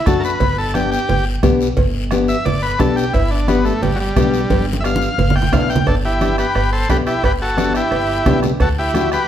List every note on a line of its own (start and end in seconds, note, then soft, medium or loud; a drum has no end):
0.06 0.34 F#2 medium
0.06 0.31 A3 medium
0.06 0.31 D4 medium
0.06 0.31 F#4 medium
0.06 0.23 A4 medium
0.06 bombo low medium
0.06 bombo rim medium
0.06 cowbell medium
0.06 high conga medium
0.06 low conga medium
0.06 short guiro medium
0.20 0.23 A#4 medium
0.20 short guiro medium
0.25 0.57 B4 medium
0.40 0.95 G1 loud
0.40 bombo low medium
0.40 cowbell loud
0.40 high conga soft
0.40 low conga medium
0.40 long guiro medium
0.58 0.75 A4 medium
0.74 0.99 B3 medium
0.74 0.99 D4 medium
0.74 0.90 G4 medium
0.74 0.99 G4 medium
0.74 bombo rim medium
0.74 cowbell medium
0.74 high conga medium
0.74 short guiro medium
0.92 1.25 G4 loud
0.92 short guiro medium
1.09 1.36 G1 medium
1.09 cowbell medium
1.09 high conga soft
1.09 low conga medium
1.09 long guiro medium
1.43 1.71 B1 medium
1.43 1.67 B3 medium
1.43 1.67 D4 medium
1.43 1.68 G4 loud
1.43 bombo low medium
1.43 bombo rim medium
1.43 cowbell medium
1.43 high conga medium
1.43 low conga medium
1.43 short guiro medium
1.61 short guiro medium
1.77 2.32 G1 medium
1.77 bombo low medium
1.77 cowbell loud
1.77 high conga soft
1.77 low conga medium
1.77 long guiro medium
2.11 2.35 B3 medium
2.11 2.36 D4 medium
2.11 2.36 G4 loud
2.11 bombo rim medium
2.11 cowbell medium
2.11 high conga medium
2.11 short guiro medium
2.28 2.45 E5 loud
2.28 short guiro medium
2.45 2.73 G1 medium
2.45 2.62 D5 medium
2.45 cowbell medium
2.45 high conga soft
2.45 low conga medium
2.45 long guiro medium
2.63 2.79 B4 loud
2.79 3.07 B1 medium
2.79 3.04 B3 medium
2.79 3.04 D4 medium
2.79 3.04 G4 medium
2.79 2.96 A4 medium
2.79 bombo low medium
2.79 bombo rim medium
2.79 cowbell medium
2.79 high conga medium
2.79 low conga medium
2.79 short guiro medium
2.96 3.13 G4 medium
2.96 short guiro medium
3.13 3.69 G1 loud
3.13 3.30 E4 medium
3.13 bombo low medium
3.13 cowbell loud
3.13 high conga soft
3.13 long guiro medium
3.31 3.48 D4 medium
3.48 3.72 B3 medium
3.48 3.65 B3 medium
3.48 3.72 D4 medium
3.48 3.72 G4 medium
3.48 bombo rim medium
3.48 cowbell medium
3.48 high conga medium
3.48 short guiro medium
3.65 3.82 A3 medium
3.65 short guiro medium
3.82 4.09 G1 medium
3.82 3.99 G3 loud
3.82 cowbell medium
3.82 high conga soft
3.82 low conga medium
3.82 long guiro medium
3.96 3.98 F#3 medium
4.00 4.66 G3 loud
4.16 4.44 B1 medium
4.16 4.40 B3 medium
4.16 4.40 D4 medium
4.16 4.41 G4 medium
4.16 bombo low medium
4.16 bombo rim medium
4.16 cowbell medium
4.16 high conga medium
4.16 low conga medium
4.16 short guiro medium
4.34 short guiro medium
4.50 5.05 G1 loud
4.50 bombo low medium
4.50 cowbell loud
4.50 high conga loud
4.50 long guiro medium
4.73 high conga medium
4.81 5.08 B3 medium
4.81 4.83 E5 medium
4.81 bombo rim medium
4.85 5.09 D4 medium
4.85 5.09 G4 medium
4.85 5.35 F5 loud
4.85 cowbell medium
4.85 short guiro medium
4.96 high conga loud
5.02 short guiro medium
5.18 5.46 G1 loud
5.18 cowbell medium
5.18 low conga medium
5.18 long guiro medium
5.30 low conga medium
5.36 5.52 G5 medium
5.36 bombo rim medium
5.42 low conga medium
5.52 5.80 B1 medium
5.52 5.76 B3 medium
5.52 5.77 D4 medium
5.52 5.77 E4 medium
5.52 5.70 F5 loud
5.52 bombo low medium
5.52 bombo rim medium
5.52 cowbell medium
5.52 low conga medium
5.52 low timbale medium
5.52 short guiro medium
5.70 5.87 G5 loud
5.70 short guiro medium
5.76 low conga medium
5.86 6.41 G1 loud
5.86 5.95 D4 medium
5.86 5.95 A4 medium
5.86 bombo low medium
5.86 bombo rim medium
5.86 cowbell medium
5.86 high conga soft
5.86 long guiro medium
6.05 6.37 E4 medium
6.05 6.36 G4 medium
6.21 6.45 B3 medium
6.21 6.45 D4 medium
6.21 6.45 G4 medium
6.21 bombo rim medium
6.21 cowbell medium
6.21 high conga medium
6.21 short guiro medium
6.38 6.71 G4 medium
6.38 6.71 B4 medium
6.38 bombo rim medium
6.38 short guiro medium
6.55 6.83 G1 medium
6.55 bombo rim medium
6.55 cowbell medium
6.55 high conga soft
6.55 long guiro medium
6.73 6.89 A4 medium
6.73 6.89 C5 medium
6.89 7.17 B1 medium
6.89 7.13 B3 medium
6.89 7.14 D4 medium
6.89 6.98 G4 medium
6.89 7.14 G4 medium
6.89 6.97 B4 medium
6.89 bombo low medium
6.89 bombo rim medium
6.89 cowbell medium
6.89 high conga medium
6.89 low timbale medium
6.89 short guiro medium
7.07 7.23 E4 medium
7.07 7.24 G4 medium
7.07 bombo rim medium
7.07 short guiro medium
7.23 7.78 G1 medium
7.23 7.32 G4 medium
7.23 7.32 B4 loud
7.23 bombo low medium
7.23 bombo rim medium
7.23 cowbell loud
7.23 high conga soft
7.23 long guiro medium
7.42 7.73 F#4 medium
7.42 7.73 A4 medium
7.57 7.81 B3 medium
7.57 7.82 D4 medium
7.57 7.82 G4 medium
7.57 bombo rim medium
7.57 cowbell medium
7.57 high conga medium
7.57 short guiro medium
7.74 8.40 E4 medium
7.74 8.40 G4 medium
7.74 bombo rim medium
7.74 short guiro medium
7.91 8.19 G1 medium
7.91 bombo rim medium
7.91 cowbell medium
7.91 high conga soft
7.91 long guiro medium
8.26 8.54 B1 medium
8.26 8.50 B3 medium
8.26 8.50 D4 medium
8.26 8.51 G4 loud
8.26 bombo low medium
8.26 bombo rim medium
8.26 cowbell medium
8.26 high conga medium
8.26 low conga medium
8.26 low timbale medium
8.26 short guiro medium
8.43 bombo rim medium
8.43 low conga medium
8.43 short guiro medium
8.60 9.15 D2 loud
8.60 8.69 F#4 medium
8.60 8.69 A4 medium
8.60 bombo low medium
8.60 bombo rim medium
8.60 cowbell loud
8.60 high conga soft
8.60 long guiro medium
8.79 9.10 E4 medium
8.79 9.10 G4 medium
8.94 9.18 A3 medium
8.94 9.19 D4 medium
8.94 9.19 F#4 medium
8.94 bombo rim medium
8.94 cowbell medium
8.94 high conga medium
8.94 short guiro medium
9.12 9.28 G4 medium
9.12 9.28 B4 medium
9.12 bombo rim medium
9.12 short guiro medium